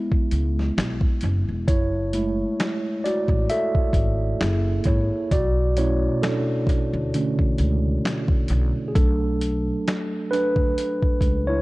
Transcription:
0.00 1.70 G#3 medium
0.00 1.69 B3 soft
0.00 1.69 E4 medium
0.12 muted upright bass stroke soft
0.12 kick medium
0.31 0.69 C#2 medium
0.31 closed hi-hat medium
0.59 snare soft
0.78 0.98 B1 loud
0.78 finger snap medium
0.78 snare loud
0.78 closed hi-hat medium
1.01 kick medium
1.21 1.44 F#1 loud
1.21 closed hi-hat medium
1.49 1.68 E1 medium
1.68 2.43 F#1 loud
1.68 2.14 E4 medium
1.68 3.00 C#5 medium
1.68 kick loud
1.68 closed hi-hat medium
2.13 3.46 G#3 medium
2.13 3.46 A3 medium
2.13 3.46 E4 medium
2.13 closed hi-hat medium
2.60 finger snap medium
2.60 snare loud
2.60 closed hi-hat medium
3.04 3.47 F#4 medium
3.04 3.51 D5 medium
3.04 closed hi-hat medium
3.28 3.45 A1 loud
3.28 kick medium
3.50 4.83 A4 medium
3.50 4.90 E5 loud
3.50 closed hi-hat medium
3.75 muted upright bass stroke soft
3.75 kick medium
3.93 4.31 G#1 loud
3.93 kick medium
3.93 closed hi-hat medium
4.41 4.78 F#1 medium
4.41 5.04 A#3 medium
4.41 4.87 E4 medium
4.41 5.03 G#4 medium
4.41 finger snap medium
4.41 snare loud
4.41 closed hi-hat medium
4.84 5.07 G#1 medium
4.84 5.33 C#5 medium
4.84 kick medium
4.84 closed hi-hat medium
4.88 5.29 E4 medium
5.31 6.06 B1 medium
5.31 5.75 F#4 medium
5.31 5.79 D5 loud
5.31 kick loud
5.31 closed hi-hat medium
5.77 8.91 B2 medium
5.77 7.13 A3 soft
5.77 7.14 C#4 medium
5.77 6.20 E4 medium
5.77 6.24 C#5 medium
5.77 closed hi-hat medium
6.22 8.46 D4 medium
6.22 8.46 A4 medium
6.22 finger snap medium
6.22 snare loud
6.22 closed hi-hat medium
6.67 kick loud
6.67 closed hi-hat medium
6.93 7.10 D2 loud
7.14 7.55 D3 medium
7.14 7.55 A3 soft
7.14 7.56 C#4 medium
7.14 closed hi-hat medium
7.39 muted upright bass stroke soft
7.39 kick medium
7.58 7.96 C#2 medium
7.58 closed hi-hat medium
8.05 finger snap medium
8.05 snare loud
8.05 closed hi-hat medium
8.28 kick loud
8.48 8.71 B1 loud
8.48 closed hi-hat medium
8.88 8.95 G#4 medium
8.95 9.70 B1 loud
8.95 10.28 F#3 medium
8.95 10.28 A3 soft
8.95 10.28 D4 medium
8.95 10.28 A4 medium
8.95 kick loud
8.95 closed hi-hat medium
9.41 closed hi-hat medium
9.88 finger snap loud
9.88 snare loud
9.88 closed hi-hat medium
10.31 11.44 D4 medium
10.31 11.44 B4 loud
10.31 closed hi-hat medium
10.56 10.73 D2 medium
10.56 kick medium
10.78 closed hi-hat medium
11.03 muted upright bass stroke soft
11.03 kick medium
11.21 11.59 C#2 medium
11.21 kick medium
11.21 closed hi-hat medium
11.47 11.62 E4 medium
11.47 11.62 C#5 loud

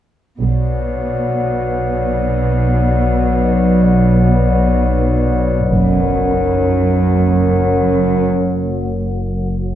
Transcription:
0.39 5.65 B1 soft
0.39 1.25 B1 soft
0.39 5.65 B2 soft
0.39 5.65 C#5 soft
0.39 5.65 D5 soft
0.39 5.65 F#5 soft
5.69 6.54 F#1 soft
5.69 9.75 F#1 medium
5.69 8.30 F#2 soft
5.69 8.35 A#4 soft
5.69 8.35 C#5 soft
5.69 8.30 F#5 soft

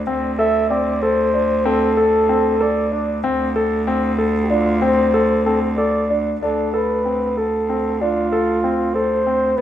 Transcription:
0.06 3.23 D2 medium
0.06 0.31 C4 medium
0.39 0.63 A4 medium
0.39 0.68 E5 loud
0.70 0.95 C4 medium
0.70 1.04 D5 medium
1.02 1.27 A4 medium
1.02 1.67 C5 medium
1.34 1.58 D4 medium
1.65 1.90 C4 medium
1.65 2.63 A4 medium
1.97 2.21 A4 medium
2.29 2.53 C4 medium
2.61 2.84 A4 medium
2.61 3.08 D5 medium
2.92 3.16 D4 medium
3.23 6.37 D2 loud
3.23 3.47 C4 medium
3.56 3.79 A4 medium
3.87 4.11 C4 medium
4.18 4.42 A4 medium
4.43 4.51 G4 medium
4.50 4.74 D4 medium
4.50 4.84 F4 medium
4.82 5.06 C4 medium
4.82 5.45 C5 medium
5.14 5.38 A4 medium
5.45 5.70 C4 medium
5.45 5.60 A4 medium
5.77 6.02 A4 medium
5.77 6.22 D5 medium
6.10 6.34 D4 medium
6.42 9.58 D2 medium
6.42 6.66 D4 medium
6.42 6.76 A4 medium
6.74 6.98 A4 medium
6.74 7.40 B4 medium
7.05 7.29 C4 medium
7.37 7.61 A4 medium
7.37 8.03 A4 medium
7.69 7.93 C4 medium
8.01 8.25 D4 medium
8.01 8.96 F4 medium
8.32 8.56 A4 medium
8.64 8.88 C4 medium
8.94 9.19 A4 medium
8.94 9.59 C5 medium
9.27 9.50 C4 medium
9.57 9.61 D2 medium
9.57 9.61 B3 medium
9.57 9.61 B4 loud

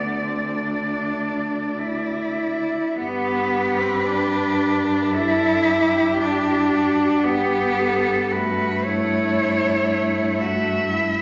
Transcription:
0.00 2.78 D2 soft
0.00 2.40 A3 soft
0.00 0.24 B3 soft
0.00 2.75 D5 soft
0.22 0.56 C4 soft
0.55 1.80 D4 soft
1.79 2.97 E4 soft
2.97 7.20 G2 medium
2.97 3.81 B3 medium
2.97 5.16 G4 medium
2.97 5.15 B4 medium
3.80 4.08 C4 medium
4.06 5.14 D4 medium
5.13 6.21 D4 medium
5.13 6.19 E4 medium
5.13 5.67 A4 medium
5.66 7.24 G4 medium
6.19 7.25 D4 medium
6.19 6.72 E4 medium
6.72 7.26 F#4 medium
7.24 11.22 G2 medium
7.24 8.33 B3 medium
7.24 8.32 G4 medium
7.24 7.80 G4 medium
7.79 8.34 A4 medium
8.31 11.22 A3 medium
8.31 8.85 F#4 medium
8.31 8.86 B4 medium
8.84 10.41 E4 medium
8.84 10.41 C#5 medium
10.39 10.91 F#4 medium
10.39 11.22 E5 medium
10.91 11.22 E4 medium

